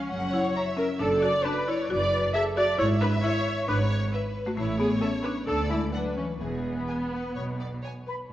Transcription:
Already playing: marimba F3, viola section C#4, violin section F5
0.11 double bass section F#1, cello section F#2, violin section F#5
0.33 marimba E4, viola section C#5
0.55 violin section E5 A#5
0.77 marimba C#4, viola section A#4
0.99 double bass section F#1, cello section F#2, marimba D4, viola section A4, violin section D5
1.22 marimba F#4, viola section D5
1.44 marimba D4, viola section B4, violin section D5 A5
1.67 marimba E4, viola section C#5
1.90 double bass section F#1, cello section F#2, marimba F#4, violin section B4, viola section D5
2.34 marimba G#4, violin section A4 A5, viola section E5
2.57 marimba F#4, viola section D5
2.78 double bass section G#1, cello section G#2, marimba E4, viola section C#5, violin section E5
3.01 marimba D4, viola section B4
3.24 marimba E4, viola section C#5, violin section E5
3.68 double bass section G#1, cello section G#2, marimba D4, viola section B4, violin section C#5
4.13 violin section B4 E5
4.46 marimba A3, viola section F#4
4.57 double bass section A1, cello section A2, marimba A3, viola section E4, violin section C#5
4.78 marimba B3, viola section G#4
5.01 marimba C#4, viola section A4, violin section E5
5.23 marimba D4, viola section B4
5.47 cello section D2, double bass section D2, marimba D4, viola section A4, violin section D5
5.70 marimba G#3, viola section E4
5.93 marimba F#3, viola section D4, violin section B4 F#5
6.17 marimba E3, viola section C#4
6.40 double bass section E1, cello section E2, marimba E3, viola section B3, violin section G#4
6.88 violin section G#4 G#5
7.12 violin section B4
7.36 double bass section B1, cello section B2, violin section C#5
7.60 violin section D5
7.83 violin section C#5 G#5
8.07 violin section B4, flute section B5

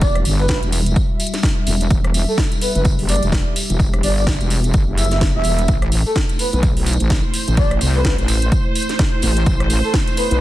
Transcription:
Already playing: wobble bass E1, analog synth pad G3 F#4 E5
0.02 soft synth lead D5, kick, closed hi-hat, tambourine
0.15 cross-stick, closed hi-hat
0.25 wobble bass G1, open hi-hat, tambourine
0.39 soft synth lead B4, tambourine
0.48 soft synth lead B4, kick, snare, closed hi-hat, tambourine
0.63 wobble bass E1, closed hi-hat, tambourine
0.72 open hi-hat, tambourine
0.86 closed hi-hat, tambourine
0.96 kick, closed hi-hat, tambourine
1.20 open hi-hat, tambourine
1.27 closed hi-hat
1.34 snare, closed hi-hat, tambourine
1.43 kick, snare, closed hi-hat, tambourine
1.67 wobble bass E1, open hi-hat, tambourine
1.80 closed hi-hat, tambourine
1.90 wobble bass E1, analog synth pad G4, kick, closed hi-hat, tambourine
2.04 cross-stick, closed hi-hat
2.14 open hi-hat, tambourine
2.28 soft synth lead A4, tambourine
2.38 kick, snare, closed hi-hat, tambourine
2.52 closed hi-hat, tambourine
2.61 soft synth lead B4, open hi-hat, tambourine
2.75 wobble bass F#1, soft synth lead B4, closed hi-hat, tambourine
2.85 kick, closed hi-hat, tambourine
2.99 open hi-hat
3.08 soft synth lead D5, open hi-hat, tambourine
3.16 closed hi-hat
3.22 wobble bass E1, closed hi-hat, tambourine
3.32 kick, snare, closed hi-hat, tambourine
3.56 open hi-hat, tambourine
3.70 wobble bass E1, closed hi-hat, tambourine
3.79 kick, closed hi-hat, tambourine
3.94 cross-stick, closed hi-hat
4.03 wobble bass G1, soft synth lead D5, open hi-hat, tambourine
4.17 soft synth lead D5, tambourine
4.27 kick, snare, closed hi-hat, tambourine
4.41 wobble bass E1, closed hi-hat, tambourine
4.50 open hi-hat, tambourine
4.64 closed hi-hat, tambourine
4.74 wobble bass G1, kick, closed hi-hat, tambourine
4.88 wobble bass F#1
4.98 soft synth lead E5, open hi-hat, tambourine
5.04 closed hi-hat
5.11 soft synth lead E5, snare, closed hi-hat, tambourine
5.21 kick, snare, closed hi-hat, tambourine
5.35 wobble bass E1, soft synth lead E5
5.44 wobble bass E1, open hi-hat, tambourine
5.59 closed hi-hat, tambourine
5.68 wobble bass A1, analog synth pad A3 E4 C5, kick, closed hi-hat, tambourine
5.82 cross-stick, closed hi-hat
5.92 open hi-hat, tambourine
6.06 soft synth lead A4, tambourine
6.15 kick, snare, closed hi-hat, tambourine
6.29 closed hi-hat, tambourine
6.39 soft synth lead B4, open hi-hat, tambourine
6.53 wobble bass B1, soft synth lead B4, closed hi-hat, tambourine
6.63 kick, closed hi-hat, tambourine
6.77 open hi-hat
6.86 open hi-hat, tambourine
6.93 closed hi-hat
7.00 wobble bass A1, closed hi-hat, tambourine
7.10 kick, snare, closed hi-hat, tambourine
7.19 string section C5
7.34 open hi-hat, tambourine
7.48 wobble bass A1, closed hi-hat, tambourine
7.57 soft synth lead D5, kick, closed hi-hat, tambourine
7.71 cross-stick, closed hi-hat
7.81 wobble bass C2, open hi-hat, tambourine
7.95 soft synth lead B4, tambourine
8.05 soft synth lead B4, kick, snare, closed hi-hat, tambourine
8.18 wobble bass A1, closed hi-hat, tambourine
8.28 open hi-hat, tambourine
8.42 closed hi-hat, tambourine
8.52 kick, closed hi-hat, tambourine
8.75 open hi-hat, tambourine
8.82 closed hi-hat
8.89 snare, closed hi-hat, tambourine
8.99 kick, snare, closed hi-hat, tambourine
9.22 wobble bass A1, open hi-hat, tambourine
9.37 closed hi-hat, tambourine
9.46 wobble bass A1, kick, closed hi-hat, tambourine
9.60 cross-stick, closed hi-hat
9.70 open hi-hat, tambourine
9.84 soft synth lead A4, tambourine
9.94 kick, snare, closed hi-hat, tambourine
10.07 closed hi-hat, tambourine
10.17 soft synth lead B4, open hi-hat, tambourine
10.30 wobble bass B1, soft synth lead B4, closed hi-hat, tambourine

